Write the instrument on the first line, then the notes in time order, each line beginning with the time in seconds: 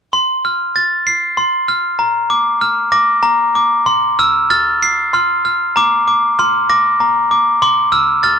glockenspiel
0.13 C6
0.45 F6
0.76 A6
1.07 C7
1.37 C6
1.68 F6
1.99 A#5
2.30 D6
2.61 F6
2.92 D6 A#6
3.23 A#5
3.55 D6
3.86 C6
4.19 E6 F6
4.50 F6 A6
4.83 C7
5.13 C6 F6
5.45 F6
5.76 A#5 D6
6.08 D6
6.39 C6 F6
6.69 D6 A#6
7.00 A#5
7.31 D6
7.62 C6 D6
7.92 E6 F6
8.23 F6 A6